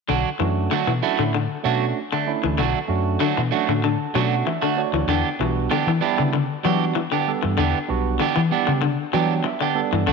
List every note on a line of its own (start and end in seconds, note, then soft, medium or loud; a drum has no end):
0.08 0.23 B1 medium
0.08 0.30 D3 medium
0.08 0.28 F#3 medium
0.08 0.28 D4 medium
0.08 0.29 F#4 medium
0.08 muted clean electric guitar stroke medium
0.39 0.67 F#2 medium
0.39 0.61 E3 medium
0.39 0.73 A3 medium
0.39 0.74 C#4 medium
0.39 0.74 D4 medium
0.39 0.74 F#4 medium
0.71 0.82 D3 medium
0.71 0.91 F#3 medium
0.71 0.91 A3 medium
0.71 0.91 D4 medium
0.71 0.91 F#4 medium
0.87 1.00 B2 medium
0.87 1.09 E3 medium
1.02 1.22 F#3 medium
1.02 1.36 A3 medium
1.02 1.22 A3 medium
1.02 1.37 C#4 medium
1.02 1.36 D4 medium
1.02 1.22 D4 medium
1.02 1.37 E4 medium
1.02 1.23 F#4 medium
1.19 1.46 A2 medium
1.19 1.29 D3 medium
1.35 1.55 D3 medium
1.64 1.92 B2 medium
1.64 1.84 F#3 medium
1.64 1.98 A3 medium
1.64 1.84 A3 medium
1.64 1.98 C#4 medium
1.64 1.99 D4 medium
1.64 1.85 D4 medium
1.64 1.99 F#4 medium
1.64 1.85 F#4 medium
2.12 2.34 D3 medium
2.12 2.31 A3 soft
2.12 2.31 D4 soft
2.26 2.61 A3 medium
2.26 2.61 C#4 medium
2.26 2.61 D4 medium
2.26 2.62 E4 medium
2.44 2.57 D2 medium
2.44 2.54 E3 medium
2.58 2.73 B1 medium
2.58 2.79 D3 medium
2.58 2.78 F#3 medium
2.58 2.78 A3 medium
2.58 2.78 D4 medium
2.58 2.79 F#4 medium
2.88 3.16 F#2 medium
2.88 3.23 A3 medium
2.88 3.23 C#4 medium
2.88 3.24 D4 medium
2.88 3.24 F#4 medium
3.20 3.32 D3 medium
3.20 3.40 F#3 medium
3.20 3.40 A3 medium
3.20 3.40 D4 medium
3.20 3.41 F#4 medium
3.37 3.51 B2 medium
3.37 3.59 E3 medium
3.51 3.71 F#3 medium
3.51 3.86 A3 medium
3.51 3.72 A3 medium
3.51 3.86 C#4 medium
3.51 3.86 D4 medium
3.51 3.72 D4 medium
3.51 3.72 F#4 medium
3.51 3.86 F#4 medium
3.51 3.81 F#5 medium
3.69 3.95 A2 medium
3.69 3.79 D3 medium
3.84 4.05 D3 medium
3.84 4.13 A5 medium
4.14 4.42 B2 medium
4.14 4.34 F#3 medium
4.14 4.36 F#3 medium
4.14 4.48 A3 medium
4.14 4.35 A3 medium
4.14 4.49 C#4 medium
4.14 4.49 D4 medium
4.14 4.35 D4 medium
4.14 4.49 F#4 medium
4.14 4.35 F#4 medium
4.14 4.44 F#5 medium
4.47 4.58 E3 medium
4.47 4.76 E5 medium
4.62 4.83 D3 medium
4.62 4.81 A3 soft
4.62 4.81 D4 soft
4.62 4.80 F#4 medium
4.76 5.08 A3 medium
4.76 5.09 D4 medium
4.76 5.09 F#4 medium
4.76 5.09 C#5 medium
4.76 5.07 D5 medium
4.93 5.06 D2 medium
4.93 5.04 E3 medium
5.07 5.22 E2 loud
5.07 5.30 D3 medium
5.07 5.28 E3 medium
5.07 5.28 B3 medium
5.07 5.28 D4 medium
5.07 5.28 G4 medium
5.39 5.67 B1 medium
5.39 5.61 E3 medium
5.39 5.74 G3 medium
5.39 5.73 B3 medium
5.39 5.74 D4 medium
5.39 5.74 F#4 medium
5.70 5.82 D3 medium
5.70 5.90 E3 medium
5.70 5.90 B3 medium
5.70 5.90 D4 medium
5.70 5.91 G4 medium
5.87 6.00 E3 medium
5.87 6.09 E3 medium
6.01 6.21 E3 medium
6.01 6.35 G3 medium
6.01 6.21 B3 medium
6.01 6.36 B3 medium
6.01 6.21 D4 medium
6.01 6.36 D4 medium
6.01 6.36 E4 medium
6.01 6.22 G4 medium
6.18 6.46 C#3 medium
6.18 6.28 D3 medium
6.33 6.54 D3 medium
6.63 6.84 E3 medium
6.63 6.92 E3 medium
6.63 6.86 F#3 medium
6.63 6.98 G3 medium
6.63 6.99 B3 medium
6.63 6.84 D4 medium
6.63 6.99 D4 medium
6.63 6.99 F#4 medium
6.63 6.84 G4 medium
6.95 7.06 E3 medium
7.12 7.33 D3 medium
7.12 7.31 B3 soft
7.12 7.31 D4 medium
7.12 7.30 G4 medium
7.27 7.61 G3 medium
7.27 7.61 B3 medium
7.27 7.61 D4 medium
7.27 7.61 A4 medium
7.43 7.57 G2 medium
7.43 7.53 E3 medium
7.57 7.72 E2 loud
7.57 7.79 D3 medium
7.57 7.77 E3 medium
7.57 7.78 B3 medium
7.57 7.78 D4 medium
7.57 7.78 G4 medium
7.88 8.16 B1 medium
7.88 8.23 G3 medium
7.88 8.23 B3 medium
7.88 8.23 D4 medium
7.88 8.23 F#4 medium
8.20 8.31 D3 medium
8.20 8.40 E3 medium
8.20 8.40 B3 medium
8.20 8.40 D4 medium
8.20 8.40 G4 medium
8.36 8.57 E3 medium
8.36 8.50 E3 medium
8.51 8.71 E3 medium
8.51 8.85 G3 medium
8.51 8.85 B3 medium
8.51 8.71 B3 medium
8.51 8.86 D4 medium
8.51 8.71 D4 medium
8.51 8.86 G4 medium
8.67 8.95 C#3 medium
8.67 8.77 D3 medium
8.82 9.03 D3 medium
9.13 9.33 E3 medium
9.13 9.41 E3 medium
9.13 9.35 F#3 medium
9.13 9.48 F#3 medium
9.13 9.47 G3 medium
9.13 9.47 B3 medium
9.13 9.33 B3 medium
9.13 9.47 D4 medium
9.13 9.34 D4 medium
9.13 9.34 G4 medium
9.13 9.43 G5 medium
9.44 9.61 E5 medium
9.44 muted clean electric guitar stroke medium
9.61 9.82 D3 medium
9.61 9.81 B3 soft
9.61 9.80 D4 medium
9.61 9.80 G4 medium
9.61 10.04 D5 medium
9.75 10.07 G3 medium
9.75 10.07 B3 medium
9.75 10.07 D4 medium
9.75 10.07 A4 medium
9.93 10.05 G2 medium
9.93 10.03 E3 medium
10.07 10.13 B1 medium
10.07 10.13 D3 medium
10.07 10.13 A3 medium
10.07 10.13 D4 medium
10.07 10.13 F#4 medium